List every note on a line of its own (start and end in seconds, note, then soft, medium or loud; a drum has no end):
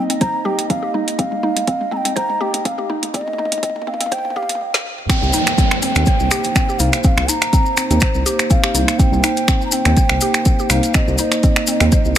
0.00 4.56 A#3 medium
0.00 4.56 D#4 medium
0.00 4.57 D#5 medium
0.10 0.16 C4 medium
0.10 closed hi-hat medium
0.21 0.33 C5 medium
0.21 0.47 A#5 loud
0.21 kick loud
0.21 closed hi-hat soft
0.21 mid tom medium
0.45 0.57 G4 loud
0.45 0.68 G5 loud
0.45 mid tom medium
0.59 closed hi-hat medium
0.69 0.82 C4 medium
0.69 0.92 F5 medium
0.69 kick loud
0.69 closed hi-hat soft
0.69 mid tom medium
0.83 0.93 G4 medium
0.94 1.06 D#4 medium
0.94 mid tom medium
1.08 closed hi-hat medium
1.18 1.26 C4 medium
1.18 1.94 F5 medium
1.18 kick loud
1.18 closed hi-hat soft
1.18 mid tom medium
1.32 mid tom medium
1.43 1.50 D#4 medium
1.43 mid tom medium
1.57 closed hi-hat medium
1.57 mid tom medium
1.67 1.79 C4 medium
1.67 kick loud
1.67 closed hi-hat soft
1.67 mid tom medium
1.81 mid tom medium
1.91 2.04 C4 medium
1.91 1.98 A#5 medium
1.91 mid tom medium
1.97 2.16 G5 loud
2.05 2.11 C4 medium
2.05 closed hi-hat medium
2.05 mid tom medium
2.16 2.28 C5 medium
2.16 2.43 A#5 loud
2.16 kick loud
2.16 closed hi-hat soft
2.16 mid tom medium
2.29 mid tom medium
2.41 2.53 G4 loud
2.41 2.68 G5 loud
2.41 mid tom loud
2.54 closed hi-hat medium
2.54 mid tom medium
2.65 2.77 C4 medium
2.65 2.90 F5 medium
2.65 kick loud
2.65 closed hi-hat soft
2.65 mid tom loud
2.78 2.88 G4 medium
2.78 mid tom medium
2.90 3.01 D#4 medium
2.90 mid tom loud
3.03 closed hi-hat medium
3.03 mid tom medium
3.14 3.21 C4 medium
3.14 3.90 D#5 medium
3.14 kick loud
3.14 closed hi-hat soft
3.14 mid tom loud
3.21 mid tom medium
3.28 mid tom medium
3.33 mid tom medium
3.38 3.46 D#4 medium
3.38 mid tom loud
3.45 mid tom medium
3.52 closed hi-hat medium
3.52 mid tom medium
3.58 mid tom medium
3.63 3.75 C4 medium
3.63 kick loud
3.63 closed hi-hat soft
3.63 mid tom loud
3.69 mid tom medium
3.76 mid tom medium
3.82 mid tom medium
3.87 3.99 C4 medium
3.87 4.15 F5 loud
3.87 mid tom loud
3.94 mid tom medium
4.00 4.06 C4 medium
4.00 closed hi-hat medium
4.00 mid tom medium
4.06 mid tom medium
4.12 4.24 C5 medium
4.12 4.39 G5 loud
4.12 kick loud
4.12 closed hi-hat soft
4.12 mid tom loud
4.18 mid tom medium
4.25 mid tom loud
4.30 mid tom medium
4.36 4.48 G4 loud
4.36 4.61 F5 loud
4.36 kick medium
4.36 mid tom loud
4.42 mid tom medium
4.49 closed hi-hat medium
4.49 mid tom medium
4.55 mid tom medium
4.61 high tom medium
4.74 snare medium
4.98 mid tom medium
5.09 12.18 A#3 medium
5.09 5.16 C4 medium
5.09 12.18 D#4 medium
5.09 12.18 C5 medium
5.09 5.78 G5 loud
5.09 finger snap medium
5.09 kick loud
5.09 closed hi-hat soft
5.09 downlifter medium
5.09 maracas soft
5.22 5.31 C2 loud
5.22 maracas soft
5.33 5.41 D#4 medium
5.33 open hi-hat loud
5.33 maracas loud
5.47 finger snap medium
5.47 closed hi-hat medium
5.47 maracas soft
5.58 5.70 C4 medium
5.58 kick loud
5.58 closed hi-hat soft
5.58 maracas soft
5.71 finger snap medium
5.71 maracas soft
5.81 5.94 C4 medium
5.81 6.80 G5 loud
5.81 open hi-hat medium
5.81 maracas medium
5.95 6.04 D#2 loud
5.95 6.02 C4 medium
5.95 finger snap medium
5.95 closed hi-hat medium
5.95 maracas soft
6.06 6.19 C5 medium
6.06 kick loud
6.06 closed hi-hat soft
6.06 maracas soft
6.20 6.28 C2 medium
6.20 maracas soft
6.31 6.43 G4 loud
6.31 finger snap medium
6.31 open hi-hat medium
6.31 maracas medium
6.44 closed hi-hat medium
6.44 maracas soft
6.55 6.68 C4 medium
6.55 finger snap medium
6.55 kick loud
6.55 closed hi-hat soft
6.55 maracas medium
6.69 6.79 G4 medium
6.69 maracas soft
6.79 6.90 C2 loud
6.79 6.92 D#4 medium
6.79 7.02 F5 medium
6.79 open hi-hat medium
6.79 maracas medium
6.93 finger snap medium
6.93 closed hi-hat medium
6.93 maracas soft
7.03 7.12 C4 medium
7.03 7.29 F5 loud
7.03 7.07 G5 medium
7.03 kick loud
7.03 closed hi-hat soft
7.03 maracas medium
7.17 7.26 C2 loud
7.17 finger snap loud
7.17 maracas soft
7.28 7.36 D#4 medium
7.28 8.26 A#5 loud
7.28 open hi-hat loud
7.28 maracas loud
7.42 finger snap medium
7.42 closed hi-hat medium
7.42 maracas soft
7.53 7.65 C4 medium
7.53 kick loud
7.53 closed hi-hat soft
7.53 maracas medium
7.66 maracas soft
7.77 7.89 C4 medium
7.77 finger snap loud
7.77 open hi-hat loud
7.77 maracas medium
7.90 7.99 D#2 loud
7.90 7.97 C4 medium
7.90 closed hi-hat medium
7.90 maracas soft
8.00 8.14 C5 medium
8.00 finger snap medium
8.00 kick loud
8.00 closed hi-hat soft
8.00 maracas medium
8.15 8.23 C2 medium
8.15 maracas soft
8.26 8.38 G4 loud
8.26 open hi-hat medium
8.26 maracas medium
8.39 finger snap medium
8.39 closed hi-hat medium
8.39 maracas soft
8.50 8.62 C4 medium
8.50 9.00 F5 loud
8.50 kick loud
8.50 closed hi-hat soft
8.50 maracas medium
8.63 8.74 G4 medium
8.63 finger snap loud
8.63 maracas soft
8.74 8.85 C2 loud
8.74 8.87 D#4 medium
8.74 open hi-hat medium
8.74 maracas loud
8.88 finger snap medium
8.88 closed hi-hat medium
8.88 maracas soft
8.98 9.07 C4 medium
8.98 9.65 G5 loud
8.98 kick loud
8.98 closed hi-hat soft
8.98 maracas medium
9.12 9.21 C2 loud
9.12 maracas soft
9.23 9.31 D#4 medium
9.23 finger snap loud
9.23 open hi-hat medium
9.23 maracas loud
9.37 closed hi-hat medium
9.37 maracas soft
9.48 9.60 C4 medium
9.48 finger snap loud
9.48 kick loud
9.48 closed hi-hat soft
9.48 maracas medium
9.61 maracas soft
9.65 9.74 A#5 medium
9.72 9.85 C4 medium
9.72 10.71 G5 loud
9.72 open hi-hat medium
9.72 maracas loud
9.85 9.94 D#2 loud
9.85 9.92 C4 medium
9.85 finger snap medium
9.85 closed hi-hat medium
9.85 maracas soft
9.97 10.09 C5 medium
9.97 kick loud
9.97 closed hi-hat soft
9.97 maracas medium
10.09 10.19 C2 medium
10.09 finger snap loud
10.09 maracas soft
10.21 10.34 G4 loud
10.21 open hi-hat medium
10.21 maracas loud
10.34 finger snap medium
10.34 closed hi-hat medium
10.34 maracas soft
10.45 10.58 C4 medium
10.45 kick loud
10.45 closed hi-hat soft
10.45 maracas medium
10.59 10.69 G4 medium
10.59 maracas soft
10.70 10.80 C2 loud
10.70 10.82 D#4 medium
10.70 10.96 F5 loud
10.70 finger snap medium
10.70 open hi-hat medium
10.70 maracas loud
10.83 closed hi-hat medium
10.83 maracas soft
10.94 11.02 C4 medium
10.94 11.19 D#5 medium
10.94 finger snap loud
10.94 kick loud
10.94 closed hi-hat soft
10.94 maracas medium
11.08 11.16 C2 loud
11.08 maracas soft
11.18 11.26 D#4 medium
11.18 12.13 D#5 medium
11.18 open hi-hat medium
11.18 maracas medium
11.32 finger snap medium
11.32 closed hi-hat medium
11.32 maracas soft
11.43 11.55 C4 medium
11.43 kick loud
11.43 closed hi-hat soft
11.43 maracas medium
11.56 finger snap loud
11.56 maracas soft
11.67 11.80 C4 medium
11.67 open hi-hat medium
11.67 maracas loud
11.80 11.89 D#2 loud
11.80 11.87 C4 medium
11.80 finger snap medium
11.80 open hi-hat medium
11.80 maracas soft
11.92 12.04 C5 medium
11.92 kick loud
11.92 closed hi-hat soft
11.92 maracas medium
12.05 12.14 C2 medium
12.05 maracas soft